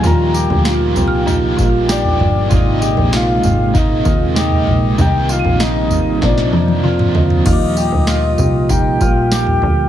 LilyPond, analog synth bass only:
\new Staff \with { instrumentName = "Analog synth bass" } { \clef bass \time 4/4 \key ees \major \tempo 4 = 97 ees,8. d,8. c,4 bes,,4 g,,8 | aes,,8. bes,,8. aes,,4 ees,4 bes,,8 | c,8. bes,,8. aes,,8 bes,,8 f,4 d,8 | ees,8. d,8. c,4 bes,,4 d,8 | }